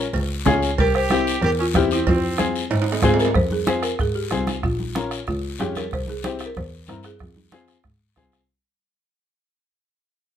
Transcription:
0.13 C#2, cowbell, high conga, long guiro
0.45 C#2 C#4 F4 G#4, bombo low, bombo rim, high conga, low conga, low timbale, short guiro
0.63 short guiro
0.78 C2 G4 A#4, bombo low, cowbell, high conga, long guiro
0.95 G4 C5, bombo rim
1.10 C4 E4 G4, bombo rim, high conga, short guiro
1.27 short guiro
1.42 E2 G4 A#4, cowbell, high conga, long guiro
1.59 C#4 F4
1.74 E2 C4 E4 G4, bombo low, bombo rim, high conga, short guiro
1.91 C4 E4, short guiro
2.07 F2 C4 F4, bombo low, cowbell, high conga, long guiro
2.38 C4 F4 G#4, bombo rim, high conga, short guiro
2.55 short guiro
2.70 G#2, cowbell, high conga, high timbale, long guiro
2.82 high timbale
2.92 low timbale
3.02 G#2 C4 F4 G#4, bombo low, bombo rim, high conga, low conga, short guiro
3.14 low timbale
3.19 A#4, short guiro
3.25 low timbale
3.34 F2 C5, bombo low, bombo rim, high conga, long guiro
3.51 G#4, high conga
3.66 C4 F4 G#4 C5, bombo rim, high conga, short guiro
3.83 A#4, bombo rim, short guiro
3.99 G#2 G#4, bombo low, bombo rim, high conga, long guiro
4.15 G4
4.31 C2 C4 F4 G#4, bombo rim, high conga, short guiro
4.47 bombo rim, high conga, short guiro
4.63 A#1 F4, bombo low, bombo rim, high conga, long guiro
4.80 high conga
4.95 C#4 F4 A#4, bombo rim, high conga, short guiro
5.11 bombo rim, short guiro
5.27 C#2 F4, bombo low, bombo rim, high conga, long guiro
5.59 F2 C#4 F4 G4 G#4, bombo rim, high conga, short guiro
5.75 A#4, bombo rim, high conga, short guiro
5.91 C2 C5, bombo low, bombo rim, high conga, long guiro
6.08 G#4, high conga
6.23 C4 E4 G4 C5, bombo rim, high conga, short guiro
6.39 bombo rim, short guiro
6.46 A#4
6.55 E2 C5, bombo low, bombo rim, high conga, long guiro
6.87 G2 C4 E4 A#4, bombo rim, high conga, short guiro
7.03 G#4, bombo rim, short guiro
7.19 F2, bombo low, bombo rim, high conga, long guiro
7.36 high conga
7.51 C4 F4 G#4, bombo rim, high conga, short guiro
7.68 bombo rim, short guiro
7.84 G#2, bombo low, bombo rim, high conga, long guiro
8.16 C2 C4 F4 G#4, bombo low, bombo rim, high conga, short guiro
8.32 bombo rim, short guiro

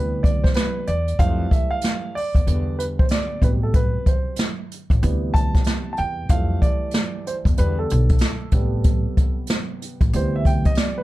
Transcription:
Already playing: D2 C3 E3 G3 B3 B4
0.23 D5, kick, closed hi-hat
0.44 C5, kick, snare
0.54 B4, snare, closed hi-hat
0.87 E2 D5, closed hi-hat
1.08 closed hi-hat
1.19 F2 E3 G3 A3 F5, kick, closed hi-hat
1.51 E5, kick, closed hi-hat
1.71 F5
1.81 snare, closed hi-hat
2.15 D5, open hi-hat
2.35 E2, kick, closed hi-hat
2.46 E2 D3 G3 B3, closed hi-hat
2.79 B4, closed hi-hat
2.99 C5, kick
3.09 D5, snare, closed hi-hat
3.42 A1 B2 C3 G3 B4, kick, closed hi-hat
3.63 A4
3.74 B4, kick, closed hi-hat
4.06 C5, kick, closed hi-hat
4.36 snare, closed hi-hat
4.72 closed hi-hat
4.90 A1, kick, closed hi-hat
5.02 D2 C3 E3 G3 B3, closed hi-hat
5.34 A5, kick, closed hi-hat
5.55 kick, snare, closed hi-hat
5.64 snare, closed hi-hat
5.93 A5
5.97 E2 G5, closed hi-hat
6.29 F2 E3 G3 A3 F5, kick, closed hi-hat
6.62 D5, kick, closed hi-hat
6.91 snare, closed hi-hat
7.27 C5, closed hi-hat
7.45 E2, kick, closed hi-hat
7.57 E2 D3 G3 B3 B4, closed hi-hat
7.79 A4
7.90 B1, closed hi-hat
8.09 kick, closed hi-hat
8.18 snare, closed hi-hat
8.51 A1 C3 G3 B3, kick, closed hi-hat
8.84 kick, closed hi-hat
9.17 kick, closed hi-hat
9.47 snare, closed hi-hat
9.82 closed hi-hat
10.01 A1, kick, closed hi-hat
10.13 D2 C3 E3 G3 B3 C5, closed hi-hat
10.36 E5
10.45 G5, kick, closed hi-hat
10.65 D#5, kick, closed hi-hat
10.75 D5, snare, closed hi-hat
10.98 B4

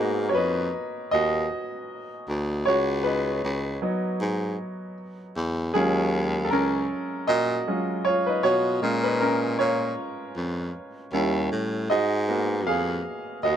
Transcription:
Already playing: G#2 A#3 B3 D#4 A#4
0.00 F#4
0.29 C#5
0.34 F2 D#4 B4
1.11 D#2 F#4 D#5
2.28 D2
2.66 C#2 F#4 C#5
3.03 D#4 B4
3.44 C#2
3.82 F#3 B3 D#4
4.21 G#2
5.36 E2
5.74 D#2 F#3 G#3 C#4 F4 G#4
6.45 A4
6.50 C#2 C#4 A#4
7.27 A#2 F#4 D#5
7.67 F#3 G#3 C#4 F4
8.05 F4 C#5
8.26 D#4 B4
8.43 B2 F4 C#5
8.82 A#2 G#3 C#4 F4
9.04 D#4 B4
9.20 C#4 A#4
9.59 A#2 F4 C#5
10.36 F2
11.13 D#2 G3 C#4 E4
11.52 A2
11.90 G#2 F#4 D#5
12.28 A#3 B3 F#4
12.67 F2 G#4 F5
13.43 D#2 F#4 D#5

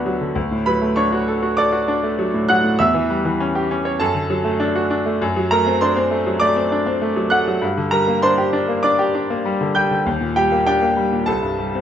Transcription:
Already playing: D2 D3 F#3 B3 D4 F#4 F#5
0.06 F#3
0.21 D3
0.35 D2
0.51 A2
0.66 F#3 B4 B5
0.82 A3
0.96 D4 C#5 C#6
1.12 F#4
1.28 A4
1.43 F#4
1.57 A4 D5 D6
1.72 F#4
1.88 D4
2.03 A3
2.19 F#3
2.34 A2
2.49 F#3 F#5 F#6
2.64 A2
2.79 E2 E5 E6
2.94 E3
3.10 G3
3.25 E3
3.40 C#4
3.55 G4
3.71 C#4
3.85 C#5
4.00 F#2 A4 A5
4.14 D3
4.30 F#3
4.45 A3
4.60 D4
4.76 F#4
4.90 D4
5.06 A3
5.22 F#2
5.36 F#3
5.51 A3 A#4 A#5
5.67 C4
5.81 D4 C5 C6
5.96 C4
6.11 A3
6.26 F#3
6.40 A3 D5 D6
6.56 C4
6.72 D4
6.86 C4
7.02 A3
7.16 F#3
7.30 A3 F#5 F#6
7.47 F#3
7.62 G2
7.77 D3
7.91 G3 A#4 A#5
8.07 A#3
8.22 D4 C5 C6
8.38 G4
8.53 D4
8.68 A#3
8.83 D4 D5 D6
8.99 G4
9.15 D4
9.30 A#3
9.45 G3
9.61 D3
9.75 G3 G5 G6
9.91 D3
10.06 D#2
10.21 A#2
10.36 G3 G4 G5
10.52 A#3
10.67 D4 G4 G5
10.82 A#3
10.97 G3
11.13 A#2
11.26 C2 A4 A5
11.42 G2
11.58 G3
11.75 C4

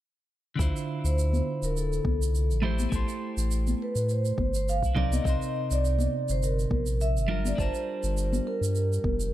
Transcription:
0.56 D2 D3 D4 E4, kick
0.60 F4 C5, shaker
0.76 shaker
1.04 D2 C5, shaker
1.19 shaker
1.33 high conga, shaker
1.62 D1 A#4, shaker
1.77 A4, shaker
1.93 shaker
2.05 C2, kick, high conga
2.22 shaker
2.35 shaker
2.50 A1, shaker
2.62 A3 E4 G4 C5, low conga
2.79 high conga, shaker
2.89 A1 A3 E4 G4, kick, shaker
2.94 A4 C5
3.09 shaker
3.37 A1, shaker
3.51 shaker
3.67 high conga, shaker
3.82 B4
3.95 A2, shaker
4.09 C5, shaker
4.25 shaker
4.38 G1, kick, high conga
4.54 C5, shaker
4.69 F5, shaker
4.82 C2, kick, shaker
4.95 C3 C4 D#4 A#4 D5, kick, low conga
5.12 D#5, high conga, shaker
5.23 C2 C3 C4 D#4, kick, shaker
5.27 A#4 C5
5.42 shaker
5.71 C2 D5, shaker
5.85 shaker
5.99 high conga, shaker
6.29 G1 C5, shaker
6.43 A#4, shaker
6.59 shaker
6.70 A#1, kick, high conga
6.86 shaker
7.01 E5, shaker
7.16 G1, shaker
7.28 G3 D4 F4 A#4, low conga
7.45 D5, high conga, shaker
7.55 G1 G3 D4 F4, kick
7.59 A#4 C5 A5, shaker
7.74 shaker
8.03 G1, shaker
8.17 shaker
8.33 high conga, shaker
8.47 A#4
8.61 G2, shaker
8.75 shaker
8.93 shaker
9.04 F1, kick, high conga
9.20 shaker

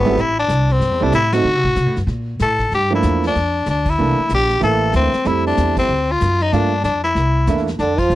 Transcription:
Already playing: G#1 B3
0.05 G3 A3 C4 E4, kick, snare
0.17 A1 E4, brush sweep, snare
0.39 D4
0.48 C2, snare, hi-hat pedal
0.69 C4, snare
0.80 G2, brush sweep, snare
0.91 E2
1.00 C2 G3 A3 C4 D4 E4
1.12 A2 E4, snare, hi-hat pedal
1.32 F#3 A3 C4 D#4 F#4, snare, ride
1.44 D3, brush sweep
1.55 C3
1.64 A2, kick
1.76 C3, snare, hi-hat pedal
1.86 A2
1.96 F#2, snare
2.07 A#2, brush sweep, snare
2.39 A2 A4, snare, hi-hat pedal
2.59 kick, snare
2.71 G2 G4, brush sweep, snare
2.91 F3 A3 A#3 D4
2.95 E4
3.02 E2, snare, hi-hat pedal
3.23 snare
3.27 D4
3.35 F2, brush sweep, snare
3.66 D2, snare, hi-hat pedal
3.70 D4
3.86 kick, ride
3.90 E4
3.98 C2 E3 A3 A#3 D4, brush sweep
4.19 muted upright bass stroke
4.29 A#1, snare, hi-hat pedal
4.34 G4
4.49 snare
4.60 A1 E3 A3 A#3 E4 A4, brush sweep, snare
4.93 D2 C4, snare, hi-hat pedal
5.13 muted upright bass stroke, snare
5.24 F2 G3 A3 C4 E4, brush sweep, snare
5.47 D4
5.57 E2, snare, hi-hat pedal
5.77 C4, kick, ride
5.89 D2, brush sweep
6.12 F4
6.20 F#2, snare, hi-hat pedal
6.40 D#4, snare
6.52 G2 A3 A#3 D4 F4, brush sweep, snare
6.84 F2 D4, snare, hi-hat pedal
7.04 E4, snare
7.15 C2, brush sweep, snare
7.47 E2 A3 A#3 D4 E4, snare, hi-hat pedal
7.57 snare
7.67 snare
7.79 F2 D3 D4, brush sweep, snare
7.98 F3 F4, kick, crash
8.10 A#1, hi-hat pedal

